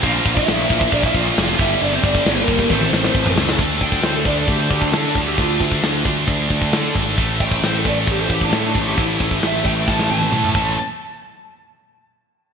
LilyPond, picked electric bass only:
\new Staff \with { instrumentName = "Picked electric bass" } { \clef bass \time 4/4 \key a \phrygian \tempo 4 = 134 bes,,8 bes,,8 bes,,8 bes,,8 bes,,8 bes,,8 f,,8 g,,8 | g,,8 g,,8 g,,8 g,,8 a,,8 a,,8 a,,8 cis,8 | d,8 d,8 d,8 d,8 d,8 d,8 d8 d,8 | d,8 d,8 d,8 d,8 d,8 d,8 d8 gis,,8 |
a,,8 a,,8 a,,8 a,,8 a,,8 a,,8 a,8 a,,8 | a,,8 a,,8 a,,8 a,,8 a,,8 a,,8 a,8 a,,8 | r1 | }